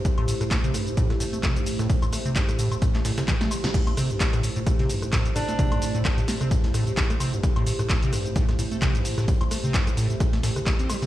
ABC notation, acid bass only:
X:1
M:4/4
L:1/16
Q:"Swing 16ths" 1/4=130
K:Am
V:1 name="Acid bass" clef=bass
A,, A,, A,, A,, A, C, G,, A,, A,, A,, A,, A, C, G,, A,, A,, | z A,, A, C, G,, A,, A,, A,, A,, A, A,, C, E, A, G, B,, | A,, A, C, G,, A,, A,, A,, A,, A, C, G,, A,, A,, A,, A,, A, | C, G,, A,, A,, z A,, A, C, G,, A,, A,, A,, A,, A, C, G,, |
A,, A,, A,, A,, A, C, G,, A,, A,, A,, A,, A, C, G,, A,, A,, | z A,, A, C, G,, A,, A,, A,, A,, A, A,, C, A,, C G, C, |]